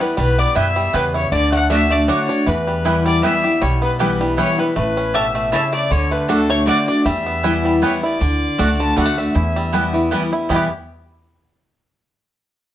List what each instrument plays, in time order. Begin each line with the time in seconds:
Already playing: five-string banjo E4 G4
0.00 five-string banjo G3, steel-string acoustic guitar B3 E4, fiddle B4, resonator guitar played with a steel bar B4
0.17 upright bass B1, steel-string acoustic guitar B2, five-string banjo G3, fiddle B4, resonator guitar played with a steel bar B4
0.38 five-string banjo B3, resonator guitar played with a steel bar D5, fiddle D5
0.55 upright bass F#2, steel-string acoustic guitar B2, mandolin B3 E4 B4 G5, five-string banjo E4, resonator guitar played with a steel bar E5, fiddle E5
0.76 five-string banjo G3
0.93 upright bass E2, steel-string acoustic guitar C#3, mandolin B3 E4 B4 G5, five-string banjo B3, resonator guitar played with a steel bar B4, fiddle B4
1.14 five-string banjo E4, resonator guitar played with a steel bar C#5, fiddle C#5
1.32 upright bass D2, five-string banjo D3, steel-string acoustic guitar D3, resonator guitar played with a steel bar D5, fiddle D5
1.52 five-string banjo A3, resonator guitar played with a steel bar F#5, fiddle F#5
1.70 steel-string acoustic guitar D3 A3 D4 F#4, mandolin A3 F#4 D5 F#5, five-string banjo D4, resonator guitar played with a steel bar E5, fiddle E5
1.90 five-string banjo A3, steel-string acoustic guitar D4 F#4, resonator guitar played with a steel bar D5, fiddle D5
2.08 steel-string acoustic guitar D3 A3 D4 F#4, mandolin A3 F#4 D5 F#5, five-string banjo D4, fiddle C#5, resonator guitar played with a steel bar C#5
2.29 five-string banjo D4, steel-string acoustic guitar D4 F#4
2.46 upright bass E2, steel-string acoustic guitar E2, five-string banjo E3, resonator guitar played with a steel bar B4, fiddle B4
2.67 five-string banjo G3
2.85 steel-string acoustic guitar E3 G3 B3 E4, mandolin B3 E4 B4 G5, five-string banjo E4
3.06 five-string banjo G3, fiddle D5, resonator guitar played with a steel bar D5
3.23 steel-string acoustic guitar E3 G3 B3 E4, mandolin B3 E4 B4 G5, five-string banjo E4, fiddle E5, resonator guitar played with a steel bar E5
3.44 steel-string acoustic guitar B3 E4, five-string banjo G4
3.61 upright bass B1, steel-string acoustic guitar B2, five-string banjo G3, fiddle C#5, resonator guitar played with a steel bar C#5
3.82 five-string banjo B3, resonator guitar played with a steel bar B4, fiddle B4
3.99 steel-string acoustic guitar E3 G3 B3 E4, mandolin B3 E4 B4 G5, five-string banjo G4, resonator guitar played with a steel bar B4, fiddle B4
4.21 five-string banjo G3, steel-string acoustic guitar B3 E4
4.37 steel-string acoustic guitar E3 G3 B3 E4, mandolin B3 E4 B4 G5, five-string banjo E4, fiddle C#5, resonator guitar played with a steel bar C#5
4.58 five-string banjo G3, steel-string acoustic guitar B3 E4, fiddle B4, resonator guitar played with a steel bar B4
4.76 upright bass A1, steel-string acoustic guitar A2, five-string banjo A3, fiddle B4, resonator guitar played with a steel bar B4
4.97 five-string banjo C#4
5.14 steel-string acoustic guitar B2, mandolin A3 E4 C#5 A5, five-string banjo G4, fiddle E5, resonator guitar played with a steel bar E5
5.35 five-string banjo A3
5.52 steel-string acoustic guitar C#3, mandolin A3 E4 C#5 A5, five-string banjo E4, resonator guitar played with a steel bar E5, fiddle E5
5.73 five-string banjo A3, resonator guitar played with a steel bar D5, fiddle D5
5.91 upright bass D2, five-string banjo D3, steel-string acoustic guitar D3, resonator guitar played with a steel bar C#5, fiddle C#5
6.11 five-string banjo A3, fiddle B4, resonator guitar played with a steel bar B4
6.28 steel-string acoustic guitar D3 A3 D4 F#4, mandolin A3 F#4 D5 F#5, five-string banjo D4, resonator guitar played with a steel bar A4, fiddle A4
6.49 five-string banjo A3, steel-string acoustic guitar D4 F#4, fiddle C#5, resonator guitar played with a steel bar C#5
6.67 steel-string acoustic guitar D3 A3 D4 F#4, mandolin A3 F#4 D5 F#5, five-string banjo D4, fiddle D5, resonator guitar played with a steel bar D5
6.87 five-string banjo D4, steel-string acoustic guitar D4 F#4, fiddle D5, resonator guitar played with a steel bar D5
7.05 upright bass E2, steel-string acoustic guitar E2, five-string banjo G3, fiddle E5, resonator guitar played with a steel bar E5
7.26 five-string banjo B3
7.43 steel-string acoustic guitar E3 G3 B3 E4, mandolin B3 E4 B4 G5, five-string banjo E4
7.65 five-string banjo G3
7.82 steel-string acoustic guitar E3 G3 B3 E4, mandolin B3 E4 B4 G5, five-string banjo B3, fiddle C#5
8.03 steel-string acoustic guitar B3 E4, five-string banjo E4, fiddle D5
8.21 upright bass D2, steel-string acoustic guitar D3, five-string banjo D4
8.58 upright bass C#2, mandolin A3 F#4 D5 F#5, steel-string acoustic guitar A3 D4 F#4, five-string banjo D4
8.80 five-string banjo D3, fiddle A5
8.96 upright bass D2, steel-string acoustic guitar D3 A3 D4 F#4, five-string banjo G3, mandolin A3 F#4 D5 F#5, fiddle F#5
9.05 five-string banjo A3
9.17 five-string banjo D4, steel-string acoustic guitar D4 F#4, fiddle E5
9.35 steel-string acoustic guitar E2, upright bass E2, five-string banjo E4
9.56 five-string banjo G3
9.73 steel-string acoustic guitar E3 G3 B3 E4, mandolin B3 E4 B4 G5, five-string banjo B3
9.93 five-string banjo E3, steel-string acoustic guitar B3 E4
10.11 steel-string acoustic guitar E3 G3 B3 E4, five-string banjo G3, mandolin B3 E4 B4 G5
10.32 steel-string acoustic guitar B3 E4, five-string banjo E4
10.49 steel-string acoustic guitar E2 B2 E3 G3 B3 E4, upright bass E2, five-string banjo G3 B3, mandolin B3 E4 B4 G5
10.54 five-string banjo E4 G4